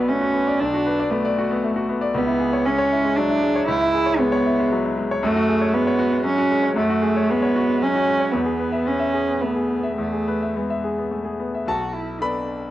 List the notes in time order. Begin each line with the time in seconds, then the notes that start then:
Already playing: B1 B3 F#4 B4 D5
0.08 A3 C#4
0.21 F#4
0.33 B3
0.47 D5
0.60 B1 D4
0.74 F#4
0.87 B4
0.99 D5
1.11 A3 B3
1.25 D5
1.38 F#4
1.51 B3
1.64 A3
1.76 F#4
1.89 B3
2.01 D5
2.14 C#2 B3
2.27 E4
2.40 G#4
2.53 C#5
2.66 G#3 C#4
2.78 C#5
2.92 E4
3.05 G#3
3.16 F#3 D4
3.30 E4
3.43 G#3
3.56 C#5
3.68 C#2 E4
3.81 E4
3.94 G#4
4.06 C#5
4.19 G#3 B3
4.32 C#5
4.46 E4
4.59 G#3
4.72 F#3
4.85 E4
4.97 G#3
5.11 C#5
5.23 F#2 A3
5.36 F#4
5.49 G#4
5.61 C#5
5.74 G#3 B3
5.87 C#5
5.99 F#4
6.12 G#3
6.24 F#3 C#4
6.38 F#4
6.51 G#3
6.63 C#5
6.76 F#2 A3
6.90 F#4
7.02 G#4
7.17 C#5
7.30 G#3 B3
7.42 C#5
7.56 F#4
7.69 G#3
7.82 F#3 C#4
7.95 F#4
8.07 G#3
8.20 C#5
8.32 E2 B3
8.46 G#4
8.60 B4
8.72 E5
8.85 B3 C#4
8.99 E5
9.14 G#4
9.27 B3
9.41 A3 B3
9.56 G#4
9.70 B3
9.83 E5
9.98 E2 A3
10.13 G#4
10.28 B4
10.42 E5
10.56 G#3 B3
10.70 E5
10.84 G#4
10.98 B3
11.11 A3
11.25 G#4
11.39 B3
11.55 E5
11.67 B1 F#4 A5
11.93 E4
12.20 B3 D4 A4 D5 B5